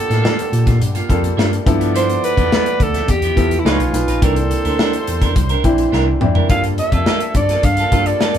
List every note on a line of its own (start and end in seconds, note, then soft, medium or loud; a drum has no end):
0.00 1.34 D3 medium
0.00 1.09 G3 medium
0.00 1.10 A#3 medium
0.00 1.34 A#3 medium
0.00 1.10 F4 medium
0.00 1.34 G4 medium
0.00 1.68 G4 medium
0.00 0.82 A4 medium
0.00 1.10 A4 medium
0.09 0.20 A2 medium
0.09 0.22 A#3 medium
0.09 0.21 F4 medium
0.09 0.21 A4 medium
0.09 snare soft
0.09 closed hi-hat soft
0.23 0.39 A#3 medium
0.23 0.37 F4 medium
0.23 0.36 A4 medium
0.23 snare loud
0.37 muted clean electric guitar stroke soft
0.37 closed hi-hat medium
0.52 0.81 A#2 medium
0.52 muted clean electric guitar stroke soft
0.52 closed hi-hat medium
0.66 0.79 A#3 soft
0.66 0.78 F4 soft
0.66 0.78 A4 soft
0.66 kick medium
0.66 snare soft
0.66 closed hi-hat soft
0.80 1.01 G2 medium
0.80 muted clean electric guitar stroke soft
0.80 closed hi-hat medium
0.95 1.08 A#3 medium
0.95 1.08 F4 medium
0.95 1.09 A4 medium
0.95 closed hi-hat soft
1.09 1.29 F2 medium
1.09 1.60 G3 medium
1.09 1.21 A#3 medium
1.09 1.60 A#3 medium
1.09 1.21 F4 medium
1.09 1.60 F4 medium
1.09 1.22 A4 medium
1.09 1.60 A4 medium
1.09 kick medium
1.09 closed hi-hat medium
1.23 muted clean electric guitar stroke soft
1.23 closed hi-hat soft
1.37 1.58 G2 medium
1.37 1.53 A#3 medium
1.37 1.51 F4 medium
1.37 1.51 A4 medium
1.37 snare medium
1.52 muted clean electric guitar stroke soft
1.52 closed hi-hat soft
1.66 2.16 G2 medium
1.66 2.67 F3 medium
1.66 3.33 B3 medium
1.66 2.67 B3 medium
1.66 2.67 E4 medium
1.66 3.33 A4 medium
1.66 2.67 A4 medium
1.66 3.33 D5 medium
1.66 muted clean electric guitar stroke soft
1.66 kick loud
1.66 closed hi-hat medium
1.80 1.93 F3 soft
1.80 1.92 B3 soft
1.80 1.92 E4 medium
1.80 closed hi-hat medium
1.94 2.10 F3 medium
1.94 2.08 B3 medium
1.94 2.07 E4 medium
1.94 2.26 C5 loud
1.94 closed hi-hat medium
2.09 muted clean electric guitar stroke soft
2.09 closed hi-hat soft
2.23 2.84 B4 medium
2.23 muted clean electric guitar stroke soft
2.23 closed hi-hat medium
2.37 2.47 E2 medium
2.37 2.50 F3 soft
2.37 2.49 B3 soft
2.37 2.49 E4 medium
2.37 kick medium
2.37 closed hi-hat soft
2.51 2.67 F3 medium
2.51 2.66 B3 medium
2.51 2.65 E4 medium
2.51 snare loud
2.66 muted clean electric guitar stroke soft
2.66 closed hi-hat medium
2.80 3.00 D2 medium
2.80 3.12 A4 medium
2.80 muted clean electric guitar stroke soft
2.80 kick medium
2.80 closed hi-hat medium
2.94 3.07 F3 soft
2.94 3.06 B3 medium
2.94 3.06 E4 medium
2.94 snare soft
2.94 closed hi-hat medium
3.08 3.28 E2 medium
3.08 3.61 G4 medium
3.08 muted clean electric guitar stroke soft
3.08 kick medium
3.08 closed hi-hat medium
3.22 3.36 F3 medium
3.22 3.37 B3 medium
3.22 3.37 E4 medium
3.22 closed hi-hat soft
3.36 3.57 E2 medium
3.36 3.63 F3 medium
3.36 3.49 F3 medium
3.36 3.65 B3 medium
3.36 3.49 B3 medium
3.36 3.65 E4 medium
3.36 3.49 E4 medium
3.36 3.66 A4 medium
3.36 kick medium
3.36 closed hi-hat medium
3.51 muted clean electric guitar stroke soft
3.51 closed hi-hat soft
3.59 3.68 E4 medium
3.65 3.75 C#2 medium
3.65 3.90 F3 medium
3.65 3.93 G#3 medium
3.65 3.90 C#4 medium
3.65 3.80 D#4 medium
3.65 3.91 D#4 medium
3.65 3.93 F4 medium
3.65 3.79 F4 medium
3.65 4.23 F4 medium
3.65 3.91 B4 medium
3.65 3.78 B4 medium
3.65 3.93 C#5 medium
3.65 snare medium
3.79 3.89 B1 medium
3.79 muted clean electric guitar stroke soft
3.79 closed hi-hat soft
3.93 4.04 B1 medium
3.93 4.19 F3 medium
3.93 4.19 C#4 medium
3.93 4.19 D#4 medium
3.93 4.19 B4 medium
3.93 muted clean electric guitar stroke soft
3.93 closed hi-hat medium
4.08 4.18 A#1 medium
4.08 4.20 D#4 soft
4.08 4.20 F4 medium
4.08 4.20 B4 medium
4.08 closed hi-hat medium
4.21 4.52 C2 medium
4.21 5.22 E3 medium
4.21 6.18 G3 medium
4.21 5.23 A#3 medium
4.21 5.23 C4 medium
4.21 5.23 D4 medium
4.21 4.37 D4 medium
4.21 6.17 E4 medium
4.21 4.37 E4 medium
4.21 5.33 A4 medium
4.21 4.36 A#4 medium
4.21 6.17 C5 medium
4.21 kick loud
4.21 closed hi-hat medium
4.36 muted clean electric guitar stroke soft
4.36 closed hi-hat medium
4.51 muted clean electric guitar stroke soft
4.51 closed hi-hat medium
4.65 4.75 D2 medium
4.65 4.77 D4 soft
4.65 4.77 E4 soft
4.65 4.77 A#4 medium
4.65 closed hi-hat soft
4.79 4.94 D4 medium
4.79 4.93 E4 medium
4.79 4.92 A#4 medium
4.79 snare loud
4.93 muted clean electric guitar stroke soft
4.93 closed hi-hat soft
5.07 5.36 E2 medium
5.07 muted clean electric guitar stroke soft
5.07 closed hi-hat medium
5.22 5.34 D4 soft
5.22 5.34 E4 soft
5.22 5.33 A#4 medium
5.22 kick medium
5.22 snare soft
5.22 closed hi-hat soft
5.36 5.56 C2 medium
5.36 muted clean electric guitar stroke soft
5.36 kick medium
5.36 closed hi-hat medium
5.49 5.63 D4 medium
5.49 5.64 E4 medium
5.49 5.64 A#4 medium
5.49 closed hi-hat soft
5.64 5.84 A#1 medium
5.64 6.14 E3 medium
5.64 6.15 C4 medium
5.64 6.15 D4 medium
5.64 6.15 E4 medium
5.64 muted clean electric guitar stroke soft
5.64 kick medium
5.64 closed hi-hat medium
5.78 muted clean electric guitar stroke soft
5.78 closed hi-hat soft
5.92 6.13 C2 medium
5.92 6.08 D4 medium
5.92 6.06 E4 medium
5.92 6.06 A#4 medium
5.92 snare soft
6.07 muted clean electric guitar stroke soft
6.20 6.41 F2 medium
6.20 6.46 E3 medium
6.20 6.46 C4 medium
6.20 6.46 D4 medium
6.20 6.47 E4 medium
6.20 muted clean electric guitar stroke soft
6.20 mid tom medium
6.35 6.48 D4 soft
6.35 6.47 E4 soft
6.35 6.47 A#4 medium
6.35 floor tom medium
6.49 6.80 G2 medium
6.49 8.38 F3 medium
6.49 7.50 G3 medium
6.49 6.64 A#3 medium
6.49 7.50 A#3 medium
6.49 8.38 D4 medium
6.49 6.63 F4 medium
6.49 7.51 F4 medium
6.49 8.38 A4 medium
6.49 6.62 A4 medium
6.49 7.51 A4 medium
6.49 6.63 F5 loud
6.49 kick loud
6.49 closed hi-hat medium
6.64 muted clean electric guitar stroke soft
6.64 closed hi-hat soft
6.78 7.31 E5 loud
6.78 muted clean electric guitar stroke soft
6.78 closed hi-hat medium
6.92 7.02 F2 medium
6.92 7.05 A#3 soft
6.92 7.04 F4 medium
6.92 7.04 A4 medium
6.92 kick medium
6.92 closed hi-hat soft
7.06 7.21 A#3 medium
7.06 7.20 F4 medium
7.06 7.19 A4 medium
7.06 snare loud
7.20 muted clean electric guitar stroke soft
7.20 closed hi-hat medium
7.35 7.55 G2 medium
7.35 7.66 D5 medium
7.35 muted clean electric guitar stroke soft
7.35 kick medium
7.35 closed hi-hat medium
7.49 7.62 A#3 soft
7.49 7.61 F4 soft
7.49 7.61 A4 medium
7.49 snare soft
7.49 closed hi-hat medium
7.63 7.83 G2 medium
7.63 8.08 F5 medium
7.63 muted clean electric guitar stroke soft
7.63 kick medium
7.63 closed hi-hat medium
7.77 7.91 A#3 medium
7.77 7.91 F4 medium
7.77 7.92 A4 medium
7.77 closed hi-hat medium
7.91 8.12 G2 medium
7.91 8.38 G3 medium
7.91 8.38 A#3 medium
7.91 8.04 A#3 medium
7.91 8.38 F4 medium
7.91 8.04 F4 medium
7.91 8.38 A4 medium
7.91 8.04 A4 medium
7.91 kick medium
7.91 closed hi-hat medium
8.06 8.38 D5 medium
8.06 muted clean electric guitar stroke soft
8.06 closed hi-hat soft
8.20 8.35 A#3 medium
8.20 8.34 F4 medium
8.20 8.34 A4 medium
8.20 snare medium
8.35 8.38 F2 medium
8.35 muted clean electric guitar stroke soft
8.35 closed hi-hat soft